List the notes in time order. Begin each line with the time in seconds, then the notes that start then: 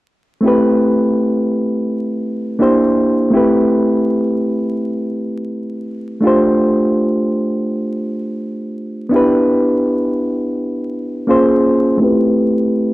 0.41 A3 C4 E4
0.46 G4 B4
2.59 A#3 D4 E4 G4 C5
3.30 A3 C4 E4
3.35 G4 B4
6.21 A3 D4 F4
6.25 G4 C5
9.09 B3 D4 E4
9.14 G4 B4
11.27 A#3 C#4 F4 G#4 C5
11.97 A3 C4 E4
12.02 G4 B4